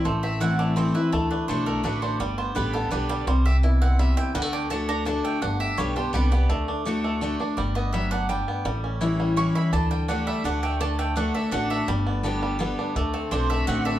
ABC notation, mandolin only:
X:1
M:3/4
L:1/8
Q:1/4=167
K:Dmix
V:1 name="Mandolin"
c e f d c B | A B c _B =B c | d c B A B d | c e z f e g |
f g a _b a g | f e ^c =c B d- | d4 z2 | d _e =e f g2- |
g z3 ^c' b | a g f e f g | a g f e f e | d3 z3 |
z A c e f e |]